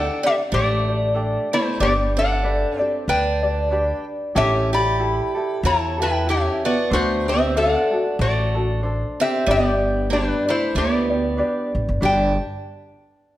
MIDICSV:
0, 0, Header, 1, 5, 480
1, 0, Start_track
1, 0, Key_signature, 1, "major"
1, 0, Tempo, 638978
1, 1348, Time_signature, 4, 2, 24, 8
1, 10047, End_track
2, 0, Start_track
2, 0, Title_t, "Resonator guitar played with a steel bar"
2, 0, Program_c, 0, 25
2, 0, Note_on_c, 0, 69, 79
2, 0, Note_on_c, 0, 78, 81
2, 172, Note_off_c, 0, 69, 0
2, 194, Note_off_c, 0, 78, 0
2, 197, Note_on_c, 0, 67, 64
2, 200, Note_on_c, 0, 76, 83
2, 251, Note_off_c, 0, 67, 0
2, 254, Note_off_c, 0, 76, 0
2, 405, Note_on_c, 0, 74, 90
2, 406, Note_on_c, 0, 67, 74
2, 1117, Note_off_c, 0, 74, 0
2, 1119, Note_off_c, 0, 67, 0
2, 1155, Note_on_c, 0, 64, 61
2, 1156, Note_on_c, 0, 72, 80
2, 1342, Note_off_c, 0, 64, 0
2, 1362, Note_off_c, 0, 72, 0
2, 1371, Note_on_c, 0, 67, 72
2, 1371, Note_on_c, 0, 74, 95
2, 1440, Note_off_c, 0, 74, 0
2, 1441, Note_off_c, 0, 67, 0
2, 1641, Note_on_c, 0, 69, 67
2, 1644, Note_on_c, 0, 78, 91
2, 2102, Note_off_c, 0, 78, 0
2, 2102, Note_on_c, 0, 76, 91
2, 2289, Note_off_c, 0, 69, 0
2, 2290, Note_off_c, 0, 76, 0
2, 2321, Note_on_c, 0, 71, 65
2, 2325, Note_on_c, 0, 79, 85
2, 3037, Note_off_c, 0, 71, 0
2, 3039, Note_off_c, 0, 79, 0
2, 3284, Note_on_c, 0, 67, 83
2, 3286, Note_on_c, 0, 76, 98
2, 3530, Note_off_c, 0, 67, 0
2, 3556, Note_off_c, 0, 76, 0
2, 3562, Note_on_c, 0, 74, 79
2, 3564, Note_on_c, 0, 83, 86
2, 4211, Note_off_c, 0, 74, 0
2, 4250, Note_on_c, 0, 73, 74
2, 4252, Note_off_c, 0, 83, 0
2, 4255, Note_on_c, 0, 81, 83
2, 4494, Note_off_c, 0, 73, 0
2, 4521, Note_off_c, 0, 81, 0
2, 4527, Note_on_c, 0, 71, 75
2, 4531, Note_on_c, 0, 79, 87
2, 4709, Note_off_c, 0, 71, 0
2, 4731, Note_off_c, 0, 79, 0
2, 4732, Note_on_c, 0, 67, 63
2, 4741, Note_on_c, 0, 76, 77
2, 4975, Note_off_c, 0, 67, 0
2, 4979, Note_off_c, 0, 76, 0
2, 4998, Note_on_c, 0, 66, 55
2, 5002, Note_on_c, 0, 74, 72
2, 5185, Note_off_c, 0, 66, 0
2, 5207, Note_off_c, 0, 74, 0
2, 5209, Note_on_c, 0, 66, 77
2, 5216, Note_on_c, 0, 72, 91
2, 5453, Note_off_c, 0, 66, 0
2, 5469, Note_on_c, 0, 67, 60
2, 5477, Note_on_c, 0, 76, 67
2, 5483, Note_off_c, 0, 72, 0
2, 5660, Note_off_c, 0, 67, 0
2, 5684, Note_off_c, 0, 76, 0
2, 5689, Note_on_c, 0, 69, 62
2, 5692, Note_on_c, 0, 78, 83
2, 6131, Note_off_c, 0, 69, 0
2, 6169, Note_on_c, 0, 66, 55
2, 6170, Note_on_c, 0, 74, 73
2, 6175, Note_off_c, 0, 78, 0
2, 6611, Note_off_c, 0, 66, 0
2, 6611, Note_off_c, 0, 74, 0
2, 6922, Note_on_c, 0, 76, 97
2, 6928, Note_on_c, 0, 67, 72
2, 7111, Note_off_c, 0, 67, 0
2, 7127, Note_off_c, 0, 76, 0
2, 7142, Note_on_c, 0, 67, 82
2, 7143, Note_on_c, 0, 74, 114
2, 7577, Note_off_c, 0, 67, 0
2, 7603, Note_off_c, 0, 74, 0
2, 7606, Note_on_c, 0, 62, 65
2, 7610, Note_on_c, 0, 71, 76
2, 7852, Note_off_c, 0, 62, 0
2, 7880, Note_off_c, 0, 71, 0
2, 7886, Note_on_c, 0, 64, 60
2, 7890, Note_on_c, 0, 72, 84
2, 8070, Note_off_c, 0, 64, 0
2, 8071, Note_off_c, 0, 72, 0
2, 8095, Note_on_c, 0, 67, 61
2, 8098, Note_on_c, 0, 74, 76
2, 8805, Note_off_c, 0, 67, 0
2, 8806, Note_off_c, 0, 74, 0
2, 9053, Note_on_c, 0, 79, 78
2, 9296, Note_off_c, 0, 79, 0
2, 10047, End_track
3, 0, Start_track
3, 0, Title_t, "Ukulele"
3, 0, Program_c, 1, 24
3, 0, Note_on_c, 1, 62, 63
3, 0, Note_on_c, 1, 67, 62
3, 0, Note_on_c, 1, 69, 60
3, 0, Note_on_c, 1, 74, 67
3, 168, Note_off_c, 1, 74, 0
3, 175, Note_off_c, 1, 67, 0
3, 178, Note_off_c, 1, 69, 0
3, 178, Note_on_c, 1, 74, 50
3, 182, Note_off_c, 1, 62, 0
3, 184, Note_on_c, 1, 67, 45
3, 192, Note_on_c, 1, 62, 40
3, 659, Note_off_c, 1, 74, 0
3, 659, Note_on_c, 1, 74, 46
3, 662, Note_off_c, 1, 67, 0
3, 665, Note_on_c, 1, 67, 41
3, 668, Note_off_c, 1, 62, 0
3, 671, Note_on_c, 1, 62, 40
3, 856, Note_off_c, 1, 67, 0
3, 857, Note_off_c, 1, 62, 0
3, 859, Note_on_c, 1, 69, 57
3, 865, Note_off_c, 1, 74, 0
3, 866, Note_on_c, 1, 62, 57
3, 868, Note_on_c, 1, 67, 59
3, 875, Note_on_c, 1, 74, 66
3, 1343, Note_off_c, 1, 69, 0
3, 1344, Note_off_c, 1, 67, 0
3, 1347, Note_on_c, 1, 71, 67
3, 1348, Note_off_c, 1, 62, 0
3, 1351, Note_on_c, 1, 62, 88
3, 1354, Note_off_c, 1, 74, 0
3, 1356, Note_on_c, 1, 67, 82
3, 1357, Note_on_c, 1, 74, 81
3, 1817, Note_off_c, 1, 71, 0
3, 1825, Note_off_c, 1, 62, 0
3, 1826, Note_on_c, 1, 71, 61
3, 1832, Note_off_c, 1, 74, 0
3, 1834, Note_off_c, 1, 67, 0
3, 1834, Note_on_c, 1, 62, 63
3, 1837, Note_on_c, 1, 67, 60
3, 1840, Note_on_c, 1, 74, 72
3, 2088, Note_off_c, 1, 74, 0
3, 2096, Note_off_c, 1, 67, 0
3, 2097, Note_on_c, 1, 74, 51
3, 2099, Note_off_c, 1, 71, 0
3, 2103, Note_off_c, 1, 62, 0
3, 2105, Note_on_c, 1, 67, 41
3, 2111, Note_on_c, 1, 62, 44
3, 2566, Note_off_c, 1, 74, 0
3, 2575, Note_on_c, 1, 74, 53
3, 2580, Note_off_c, 1, 62, 0
3, 2582, Note_off_c, 1, 67, 0
3, 2582, Note_on_c, 1, 67, 48
3, 2589, Note_on_c, 1, 62, 42
3, 2777, Note_off_c, 1, 62, 0
3, 2779, Note_off_c, 1, 67, 0
3, 2782, Note_on_c, 1, 71, 56
3, 2786, Note_off_c, 1, 74, 0
3, 2786, Note_on_c, 1, 62, 54
3, 2793, Note_on_c, 1, 67, 61
3, 2795, Note_on_c, 1, 74, 67
3, 3264, Note_off_c, 1, 67, 0
3, 3265, Note_off_c, 1, 71, 0
3, 3267, Note_on_c, 1, 64, 75
3, 3268, Note_off_c, 1, 62, 0
3, 3268, Note_off_c, 1, 74, 0
3, 3268, Note_on_c, 1, 67, 81
3, 3271, Note_on_c, 1, 69, 74
3, 3742, Note_off_c, 1, 64, 0
3, 3749, Note_off_c, 1, 67, 0
3, 3751, Note_on_c, 1, 64, 61
3, 3755, Note_off_c, 1, 69, 0
3, 3756, Note_on_c, 1, 67, 63
3, 3758, Note_on_c, 1, 69, 65
3, 4005, Note_off_c, 1, 69, 0
3, 4014, Note_off_c, 1, 67, 0
3, 4014, Note_on_c, 1, 69, 47
3, 4022, Note_off_c, 1, 64, 0
3, 4023, Note_on_c, 1, 67, 46
3, 4031, Note_on_c, 1, 64, 43
3, 4488, Note_off_c, 1, 69, 0
3, 4491, Note_off_c, 1, 67, 0
3, 4491, Note_on_c, 1, 69, 51
3, 4499, Note_off_c, 1, 64, 0
3, 4500, Note_on_c, 1, 67, 44
3, 4508, Note_on_c, 1, 64, 36
3, 4698, Note_off_c, 1, 64, 0
3, 4705, Note_off_c, 1, 69, 0
3, 4707, Note_on_c, 1, 64, 60
3, 4709, Note_off_c, 1, 67, 0
3, 4716, Note_on_c, 1, 69, 60
3, 5184, Note_on_c, 1, 72, 79
3, 5189, Note_off_c, 1, 64, 0
3, 5191, Note_on_c, 1, 62, 78
3, 5194, Note_off_c, 1, 69, 0
3, 5194, Note_on_c, 1, 69, 69
3, 5655, Note_off_c, 1, 72, 0
3, 5664, Note_on_c, 1, 72, 53
3, 5671, Note_off_c, 1, 62, 0
3, 5673, Note_off_c, 1, 69, 0
3, 5674, Note_on_c, 1, 62, 62
3, 5676, Note_on_c, 1, 66, 67
3, 5681, Note_on_c, 1, 69, 77
3, 5933, Note_off_c, 1, 69, 0
3, 5939, Note_off_c, 1, 72, 0
3, 5940, Note_off_c, 1, 66, 0
3, 5942, Note_on_c, 1, 69, 51
3, 5944, Note_off_c, 1, 62, 0
3, 5949, Note_on_c, 1, 66, 48
3, 5956, Note_on_c, 1, 62, 37
3, 6411, Note_off_c, 1, 69, 0
3, 6419, Note_off_c, 1, 66, 0
3, 6420, Note_on_c, 1, 69, 51
3, 6428, Note_on_c, 1, 66, 49
3, 6433, Note_off_c, 1, 62, 0
3, 6436, Note_on_c, 1, 62, 43
3, 6627, Note_off_c, 1, 62, 0
3, 6630, Note_off_c, 1, 69, 0
3, 6631, Note_on_c, 1, 72, 54
3, 6634, Note_off_c, 1, 66, 0
3, 6636, Note_on_c, 1, 62, 62
3, 6647, Note_on_c, 1, 69, 62
3, 7110, Note_off_c, 1, 72, 0
3, 7113, Note_on_c, 1, 71, 78
3, 7115, Note_off_c, 1, 62, 0
3, 7116, Note_off_c, 1, 69, 0
3, 7118, Note_on_c, 1, 62, 70
3, 7119, Note_on_c, 1, 67, 85
3, 7121, Note_on_c, 1, 74, 86
3, 7589, Note_off_c, 1, 71, 0
3, 7592, Note_on_c, 1, 71, 64
3, 7594, Note_off_c, 1, 62, 0
3, 7597, Note_off_c, 1, 67, 0
3, 7597, Note_on_c, 1, 62, 61
3, 7600, Note_on_c, 1, 67, 65
3, 7604, Note_off_c, 1, 74, 0
3, 7607, Note_on_c, 1, 74, 68
3, 7845, Note_off_c, 1, 74, 0
3, 7854, Note_on_c, 1, 74, 49
3, 7858, Note_off_c, 1, 67, 0
3, 7860, Note_off_c, 1, 62, 0
3, 7864, Note_off_c, 1, 71, 0
3, 7867, Note_on_c, 1, 67, 47
3, 7869, Note_on_c, 1, 62, 42
3, 8334, Note_off_c, 1, 74, 0
3, 8337, Note_on_c, 1, 74, 43
3, 8344, Note_off_c, 1, 67, 0
3, 8344, Note_on_c, 1, 67, 42
3, 8346, Note_off_c, 1, 62, 0
3, 8349, Note_on_c, 1, 62, 37
3, 8538, Note_off_c, 1, 67, 0
3, 8539, Note_off_c, 1, 62, 0
3, 8541, Note_on_c, 1, 71, 57
3, 8548, Note_on_c, 1, 62, 65
3, 8549, Note_off_c, 1, 74, 0
3, 8552, Note_on_c, 1, 67, 56
3, 8558, Note_on_c, 1, 74, 63
3, 9017, Note_off_c, 1, 71, 0
3, 9020, Note_on_c, 1, 71, 79
3, 9025, Note_off_c, 1, 62, 0
3, 9028, Note_on_c, 1, 62, 91
3, 9030, Note_off_c, 1, 67, 0
3, 9033, Note_on_c, 1, 67, 86
3, 9037, Note_off_c, 1, 74, 0
3, 9040, Note_on_c, 1, 74, 71
3, 9243, Note_off_c, 1, 71, 0
3, 9247, Note_off_c, 1, 62, 0
3, 9250, Note_off_c, 1, 67, 0
3, 9253, Note_off_c, 1, 74, 0
3, 10047, End_track
4, 0, Start_track
4, 0, Title_t, "Steel-string acoustic guitar"
4, 0, Program_c, 2, 25
4, 0, Note_on_c, 2, 62, 87
4, 160, Note_off_c, 2, 62, 0
4, 175, Note_on_c, 2, 60, 77
4, 232, Note_off_c, 2, 60, 0
4, 389, Note_on_c, 2, 57, 78
4, 1110, Note_off_c, 2, 57, 0
4, 1151, Note_on_c, 2, 57, 73
4, 1339, Note_off_c, 2, 57, 0
4, 1354, Note_on_c, 2, 59, 81
4, 1427, Note_off_c, 2, 59, 0
4, 1628, Note_on_c, 2, 62, 81
4, 2093, Note_off_c, 2, 62, 0
4, 2093, Note_on_c, 2, 60, 81
4, 2282, Note_off_c, 2, 60, 0
4, 2322, Note_on_c, 2, 62, 80
4, 3037, Note_off_c, 2, 62, 0
4, 3277, Note_on_c, 2, 61, 83
4, 3526, Note_off_c, 2, 61, 0
4, 3552, Note_on_c, 2, 67, 79
4, 4206, Note_off_c, 2, 67, 0
4, 4244, Note_on_c, 2, 64, 86
4, 4490, Note_off_c, 2, 64, 0
4, 4520, Note_on_c, 2, 64, 78
4, 4706, Note_off_c, 2, 64, 0
4, 4724, Note_on_c, 2, 61, 69
4, 4970, Note_off_c, 2, 61, 0
4, 4996, Note_on_c, 2, 59, 75
4, 5183, Note_off_c, 2, 59, 0
4, 5208, Note_on_c, 2, 57, 77
4, 5452, Note_off_c, 2, 57, 0
4, 5478, Note_on_c, 2, 60, 62
4, 5665, Note_off_c, 2, 60, 0
4, 5686, Note_on_c, 2, 62, 81
4, 6129, Note_off_c, 2, 62, 0
4, 6170, Note_on_c, 2, 57, 62
4, 6611, Note_off_c, 2, 57, 0
4, 6911, Note_on_c, 2, 60, 82
4, 7102, Note_off_c, 2, 60, 0
4, 7110, Note_on_c, 2, 59, 82
4, 7561, Note_off_c, 2, 59, 0
4, 7588, Note_on_c, 2, 55, 74
4, 7842, Note_off_c, 2, 55, 0
4, 7877, Note_on_c, 2, 57, 72
4, 8065, Note_off_c, 2, 57, 0
4, 8080, Note_on_c, 2, 59, 74
4, 8798, Note_off_c, 2, 59, 0
4, 9037, Note_on_c, 2, 62, 73
4, 9287, Note_off_c, 2, 62, 0
4, 10047, End_track
5, 0, Start_track
5, 0, Title_t, "Upright bass"
5, 0, Program_c, 3, 32
5, 394, Note_on_c, 3, 33, 88
5, 1016, Note_off_c, 3, 33, 0
5, 1354, Note_on_c, 3, 31, 81
5, 1977, Note_off_c, 3, 31, 0
5, 2312, Note_on_c, 3, 38, 78
5, 2935, Note_off_c, 3, 38, 0
5, 3274, Note_on_c, 3, 33, 93
5, 3897, Note_off_c, 3, 33, 0
5, 4232, Note_on_c, 3, 40, 90
5, 4856, Note_off_c, 3, 40, 0
5, 5194, Note_on_c, 3, 38, 91
5, 5817, Note_off_c, 3, 38, 0
5, 6153, Note_on_c, 3, 33, 91
5, 6777, Note_off_c, 3, 33, 0
5, 7115, Note_on_c, 3, 31, 91
5, 7738, Note_off_c, 3, 31, 0
5, 8076, Note_on_c, 3, 38, 91
5, 8563, Note_off_c, 3, 38, 0
5, 8825, Note_on_c, 3, 33, 72
5, 8918, Note_off_c, 3, 33, 0
5, 8929, Note_on_c, 3, 31, 80
5, 9022, Note_off_c, 3, 31, 0
5, 9030, Note_on_c, 3, 31, 86
5, 9283, Note_off_c, 3, 31, 0
5, 10047, End_track
0, 0, End_of_file